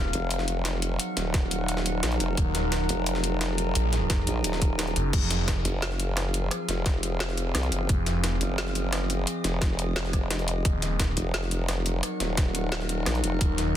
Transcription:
Already playing: detuned saw bass D#1, synth drone F#3 D#4 A#4 F#5
0.13 wobble bass F1, closed hi-hat
0.31 closed hi-hat
0.39 snare
0.48 closed hi-hat
0.65 snare, closed hi-hat
0.82 closed hi-hat
0.99 closed hi-hat
1.17 wobble bass D#1, snare, closed hi-hat
1.34 kick, snare, closed hi-hat
1.51 closed hi-hat
1.68 closed hi-hat
1.77 snare
1.86 closed hi-hat
2.03 wobble bass A#1, snare, closed hi-hat
2.12 closed hi-hat
2.20 wobble bass F1, closed hi-hat
2.37 detuned saw bass D#1, synth drone G#4, kick, closed hi-hat
2.55 snare, closed hi-hat
2.72 snare, closed hi-hat
2.89 wobble bass F1, closed hi-hat
3.06 closed hi-hat
3.15 snare
3.24 closed hi-hat
3.41 snare, closed hi-hat
3.58 closed hi-hat
3.75 detuned saw bass A#1, closed hi-hat
3.93 snare, closed hi-hat
4.10 detuned saw bass F1, kick, snare, closed hi-hat
4.27 wobble bass A#1, closed hi-hat
4.44 wobble bass D#1, closed hi-hat
4.53 snare
4.62 kick, closed hi-hat
4.79 snare, closed hi-hat
4.87 closed hi-hat
4.96 detuned saw bass F#1, closed hi-hat
5.13 detuned saw bass F1, synth drone F3 C4 G#4 F5, kick, closed hi-hat, crash
5.31 snare, closed hi-hat
5.48 kick, snare, closed hi-hat
5.65 wobble bass F#1, closed hi-hat
5.82 snare, closed hi-hat
5.91 snare
5.99 closed hi-hat
6.17 cross-stick, snare, closed hi-hat
6.34 closed hi-hat
6.51 cross-stick, closed hi-hat
6.68 wobble bass F1, snare, closed hi-hat
6.86 kick, snare, closed hi-hat
7.03 closed hi-hat
7.20 snare, closed hi-hat
7.29 snare
7.37 closed hi-hat
7.55 wobble bass C2, cross-stick, snare, closed hi-hat
7.63 closed hi-hat
7.72 wobble bass F#1, closed hi-hat
7.89 detuned saw bass F1, synth drone D#5, kick, closed hi-hat
8.06 snare, closed hi-hat
8.24 snare, closed hi-hat
8.41 wobble bass F#1, closed hi-hat
8.58 snare, closed hi-hat
8.67 snare
8.75 closed hi-hat
8.93 cross-stick, snare, closed hi-hat
9.10 closed hi-hat
9.27 closed hi-hat
9.44 wobble bass F1, snare, closed hi-hat
9.62 kick, snare, closed hi-hat
9.79 closed hi-hat
9.96 snare, closed hi-hat
10.05 snare
10.13 kick, cross-stick, closed hi-hat
10.31 snare, closed hi-hat
10.39 closed hi-hat
10.48 closed hi-hat
10.65 detuned saw bass D#1, synth drone F#3 D#4 A#4 F#5, kick, closed hi-hat
10.82 snare, closed hi-hat
10.99 kick, snare, closed hi-hat
11.17 wobble bass F1, closed hi-hat
11.34 snare, closed hi-hat
11.43 snare
11.51 closed hi-hat
11.69 cross-stick, snare, closed hi-hat
11.86 closed hi-hat
12.03 cross-stick, closed hi-hat
12.20 wobble bass D#1, snare, closed hi-hat
12.37 kick, snare, closed hi-hat
12.55 closed hi-hat
12.72 snare, closed hi-hat
12.81 snare
12.89 closed hi-hat
13.06 wobble bass A#1, cross-stick, snare, closed hi-hat
13.15 closed hi-hat
13.24 wobble bass F1, closed hi-hat
13.41 detuned saw bass D#1, kick, closed hi-hat
13.58 snare, closed hi-hat

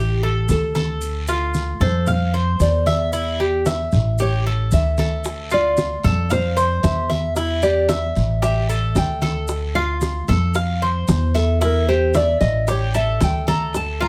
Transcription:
Already playing: upright bass A1, cuban tres G4, nylon-string guitar G4
0.23 cuban tres A4, high conga
0.49 upright bass D2, nylon-string guitar A4, high conga, short guiro, maracas
0.75 cuban tres A4, high conga, short guiro, maracas
1.01 high conga, long guiro, maracas
1.27 cuban tres F4, high conga, maracas
1.54 high conga, short guiro, maracas
1.80 upright bass F2, cuban tres A4, nylon-string guitar C5, high conga, low conga, short guiro, maracas
2.07 cuban tres F5, high conga, low conga, long guiro, maracas
2.34 cuban tres C5, high conga
2.60 upright bass E2, nylon-string guitar D5, high conga, short guiro, maracas
2.86 cuban tres E5, high conga, short guiro, maracas
3.13 cuban tres E4, high conga, long guiro, maracas
3.40 cuban tres G4, high conga
3.66 cuban tres E5, high conga, short guiro, maracas
3.92 upright bass A1, high conga, short guiro, maracas
4.18 cuban tres G4, nylon-string guitar C#5, high conga, long guiro, maracas
4.46 cuban tres A4, high conga
4.71 upright bass D2, nylon-string guitar E5, high conga, short guiro, maracas
4.98 cuban tres A4, high conga, short guiro, maracas
5.24 high bongo, high conga, long guiro, maracas
5.50 cuban tres F4, nylon-string guitar D5, high conga, maracas
5.77 high bongo, high conga, short guiro, maracas
6.04 upright bass F2, cuban tres A4, high conga, low conga, short guiro, maracas
6.30 nylon-string guitar C5, cuban tres F5, high bongo, high conga, low conga, long guiro, maracas
6.57 cuban tres C5, high conga, maracas
6.83 upright bass E2, nylon-string guitar E5, high bongo, low bongo, high conga, short guiro, maracas
7.10 cuban tres E5, high conga, short guiro, maracas
7.36 cuban tres E4, high bongo, high conga, long guiro, maracas
7.62 cuban tres G4, nylon-string guitar D5, high bongo, high conga, maracas
7.89 cuban tres E5, high bongo, high conga, short guiro, maracas
8.15 upright bass A1, high bongo, high conga, short guiro, maracas
8.42 cuban tres G4, nylon-string guitar E5, high bongo, high conga, long guiro, maracas
8.68 cuban tres A4, high conga, maracas
8.95 upright bass D2, nylon-string guitar G5, high bongo, low bongo, high conga, short guiro, maracas
9.21 cuban tres A4, high bongo, high conga, short guiro, maracas
9.48 high bongo, high conga, long guiro, maracas
9.75 cuban tres F4, nylon-string guitar F5, high conga
10.01 high bongo, high conga, short guiro, maracas
10.28 upright bass F2, cuban tres A4, high conga, low conga, short guiro, maracas
10.54 cuban tres F5, high bongo, high conga, long guiro, maracas
10.82 cuban tres C5, high conga
11.08 upright bass E2, high bongo, low bongo, high conga, short guiro, maracas
11.34 nylon-string guitar A4, cuban tres E5, short guiro, maracas
11.61 cuban tres E4, nylon-string guitar A#4, high bongo, high conga, long guiro, maracas
11.88 cuban tres G4, nylon-string guitar C5, high bongo, high conga
12.14 nylon-string guitar D5, cuban tres E5, high bongo, high conga, short guiro, maracas
12.41 upright bass A1, nylon-string guitar D#5, high bongo, high conga, short guiro, maracas
12.67 cuban tres G4, nylon-string guitar C#5, high bongo, high conga, long guiro, maracas
12.94 cuban tres A4, nylon-string guitar E5, high conga, maracas
13.20 upright bass D2, nylon-string guitar G5, high bongo, low bongo, high conga, short guiro, maracas
13.47 cuban tres A4, nylon-string guitar A#5, high bongo, high conga, short guiro, maracas
13.73 nylon-string guitar A5, high bongo, high conga, long guiro, maracas
14.00 cuban tres F4, nylon-string guitar A#5, high conga

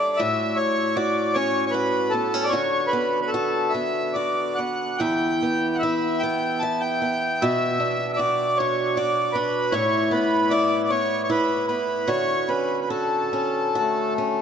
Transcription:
Already playing: steel-string acoustic guitar G3 D4 A4, accordion D5
0.17 steel-string acoustic guitar A2 F#4, accordion E5
0.56 accordion C#5
0.95 steel-string acoustic guitar F#4, accordion D5
1.34 steel-string acoustic guitar C#4, accordion C#5
1.66 accordion C#5
1.71 steel-string acoustic guitar F#4, accordion B4
2.10 steel-string acoustic guitar B3, accordion A4
2.34 steel-string acoustic guitar C#4
2.44 accordion D5
2.49 steel-string acoustic guitar D3, accordion C#5
2.53 steel-string acoustic guitar F#4
2.87 accordion B4
2.93 steel-string acoustic guitar B3
3.22 accordion B4
3.27 accordion A4
3.34 steel-string acoustic guitar F#4
3.69 accordion E5
3.74 steel-string acoustic guitar B3
4.13 steel-string acoustic guitar F#4, accordion D5
4.55 accordion F#5
4.59 steel-string acoustic guitar B3
4.98 steel-string acoustic guitar E2 E4, accordion G5
5.43 steel-string acoustic guitar B3
5.75 accordion F#5
5.79 steel-string acoustic guitar E4, accordion E5
6.19 accordion G5
6.23 steel-string acoustic guitar B3
6.59 steel-string acoustic guitar E4, accordion A5
6.81 accordion G5
7.02 steel-string acoustic guitar B3
7.42 steel-string acoustic guitar B2 F#4, accordion E5
7.80 steel-string acoustic guitar D4
8.13 accordion D5 E5
8.19 steel-string acoustic guitar F#4
8.57 steel-string acoustic guitar D4, accordion C#5
8.96 steel-string acoustic guitar F#4, accordion D5
9.33 steel-string acoustic guitar D4, accordion B4
9.72 steel-string acoustic guitar A2 E4, accordion C#5
10.11 steel-string acoustic guitar B3, accordion B4
10.50 steel-string acoustic guitar E4, accordion D5
10.84 accordion D5
10.90 steel-string acoustic guitar B3, accordion C#5
11.24 accordion C#5
11.30 steel-string acoustic guitar E4, accordion B4
11.67 steel-string acoustic guitar B3, accordion B4
12.07 steel-string acoustic guitar D3 F#4, accordion C#5
12.49 steel-string acoustic guitar C#4, accordion B4
12.81 accordion B4
12.89 steel-string acoustic guitar F#4, accordion A4
13.33 steel-string acoustic guitar C#4
13.75 accordion A3, steel-string acoustic guitar F#4
14.18 steel-string acoustic guitar C#4

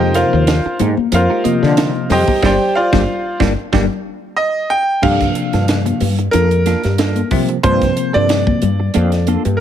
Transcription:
Already playing: fretless electric bass F2, tine electric piano C3 F3 A#3 D#4, grand piano G4 C5 D#5 G5
0.00 clean electric guitar G#3 D#4 G4 A#4
0.14 grand piano F4 A#4 C5 F5, snare, closed hi-hat
0.33 fretless electric bass D#2, muted clean electric guitar stroke
0.47 snare, closed hi-hat
0.65 muted fretless electric bass stroke, muted clean electric guitar stroke
0.79 fretless electric bass G#2, clean electric guitar G#3 D#4 G4 A#4, closed hi-hat, high conga, low conga
0.97 muted clean electric guitar stroke, muted fretless electric bass stroke, high conga
1.12 fretless electric bass F2, grand piano F4 A#4 C5 F5, muted clean electric guitar stroke, closed hi-hat
1.30 clean electric guitar G#3 D#4 G4 A#4
1.44 tine electric piano C3 F3 A#3 D#5, muted fretless electric bass stroke, closed hi-hat, high conga
1.63 fretless electric bass D3, snare
1.77 clean electric guitar G#3 D#4 G4 A#4, snare, closed hi-hat
1.95 muted clean electric guitar stroke
2.10 fretless electric bass F2, grand piano G4 C5 D#5 G5, muted clean electric guitar stroke, snare, open hi-hat, low conga
2.28 clean electric guitar D#4 G4 A#4, muted fretless electric bass stroke, kick, high conga
2.42 fretless electric bass G1, tine electric piano G3 A#3 D4, clean electric guitar D4 F4 G4, grand piano G4 C5 D5 G5, kick, snare, low conga
2.75 grand piano F4 C5 D5 F5
2.93 fretless electric bass G1, tine electric piano G3 A#3 D4, clean electric guitar D4 F4 G4, kick, snare, low conga
3.40 fretless electric bass G1, tine electric piano G3 A#3 D4, clean electric guitar D4 F4 G4, kick, snare, low conga
3.73 fretless electric bass G1, tine electric piano G3 A#3 D4, clean electric guitar D4 F4 G4, kick, snare, low conga
4.37 grand piano D#5
4.70 grand piano G5
5.02 fretless electric bass G2, tine electric piano C3 F3 A#3 D4, clean electric guitar A#3 D4 F4 A4, grand piano F5, kick, crash
5.20 kick, snare, closed hi-hat
5.35 muted clean electric guitar stroke, closed hi-hat
5.53 fretless electric bass G2, clean electric guitar D4 F4 A4, snare, closed hi-hat
5.68 snare, closed hi-hat
5.86 muted clean electric guitar stroke, closed hi-hat, high conga
6.00 fretless electric bass G2, open hi-hat, low conga
6.19 muted clean electric guitar stroke, closed hi-hat
6.31 fretless electric bass F2, clean electric guitar A#3 D4 F4 A4, grand piano A#4, closed hi-hat, high conga
6.51 muted clean electric guitar stroke, closed hi-hat
6.66 clean electric guitar A#3 D4 F4 A4, snare, closed hi-hat, high conga
6.84 fretless electric bass G2, muted clean electric guitar stroke, snare, closed hi-hat
6.98 clean electric guitar A#3 D4 F4 A4, snare, closed hi-hat
7.16 closed hi-hat, high conga
7.31 tine electric piano C3 F3 A#3 C4, fretless electric bass C3, muted clean electric guitar stroke, kick, open hi-hat, low conga
7.49 muted clean electric guitar stroke, closed hi-hat
7.63 fretless electric bass G2, tine electric piano C3 F3 A#3 C4, clean electric guitar A#3 D4 F4 A4, grand piano C5, kick, closed hi-hat
7.82 kick, snare, closed hi-hat
7.96 muted clean electric guitar stroke, closed hi-hat
8.13 fretless electric bass G2, clean electric guitar D4 F4 A4, grand piano D5
8.29 snare, closed hi-hat
8.47 muted clean electric guitar stroke, kick, high conga
8.62 fretless electric bass G2, closed hi-hat, low conga
8.80 muted clean electric guitar stroke
8.94 fretless electric bass F2, clean electric guitar A#3 D4 F4 A4, closed hi-hat, high conga
9.12 muted clean electric guitar stroke, snare, closed hi-hat
9.27 clean electric guitar A#3 D4 F4 A4, closed hi-hat, high conga
9.45 fretless electric bass G2, muted clean electric guitar stroke, closed hi-hat
9.57 grand piano A#4

